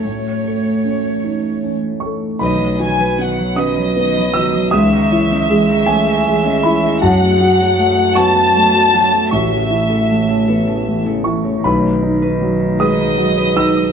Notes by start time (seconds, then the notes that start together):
Already playing: A3
0.02 A2 A3 C#5
0.06 E3 C#5
0.44 A4
0.84 C#4
1.24 D#4
1.64 C#4
2.00 A4 C#6
2.39 B1 D#3 F#3 D#4 B4 D#5 B5
2.58 F#3 B5
2.79 D#3 F#4 G#5 B5
2.99 F#3 B4
3.18 D#3 B3 F#5
3.38 F#3 B5
3.56 D#3 C#4 B4 D#5 D#6
3.77 F#3 B5
3.96 D#3 B3
4.15 F#3 B4
4.34 D#3 F#4 B5 E6
4.54 F#3 D#6
4.71 C#2 E3 C#4 E4 G#4 E5 D#6
4.75 C#5
4.92 D#3 C#5
5.12 E3 E4 C#5
5.30 D#3 C#4
5.50 E3 G#3
5.69 D#3 C#5
5.86 E3 A3 C#4 G#5
6.05 D#3 C#5
6.26 E3 G#3
6.45 D#3 C#4
6.63 E3 E4 C#5 B5
6.83 D#3 E4
7.01 F#2 F#3 A3 F#4 F#5 A5
7.21 A3 F#5
7.39 F#3 F#4 F#5
7.60 A3 F#4
7.78 F#3 A3
7.96 A3 F#5
8.15 F#3 B3 F#4 A5 C#6
8.34 A3 F#5
8.54 F#3 A3
8.74 A3 F#4
8.93 F#3 F#4 F#5
9.13 A3 A4
9.31 A1 E3 E4 A4 C#5 E5 C#6
9.51 C#3 A5
9.70 E3 E4 A5
9.90 C#3 A4
10.07 E3 A3
10.28 C#3 A5
10.46 E3 B3 A4
10.65 C#3 A5
10.85 E3 A3
11.04 C#3 A4
11.24 E3 E4 A5 C#6
11.43 C#3 C#5
11.62 B1 D#3 D#4 B4 B5
11.66 F#3 F#5
11.84 B5
12.03 D#4 B5
12.22 B4
12.42 F#3
12.60 B5
12.80 G#3 B4 D#5 D#6
13.00 B5
13.18 F#3
13.38 B4
13.56 D#4 B5 E6
13.76 D#6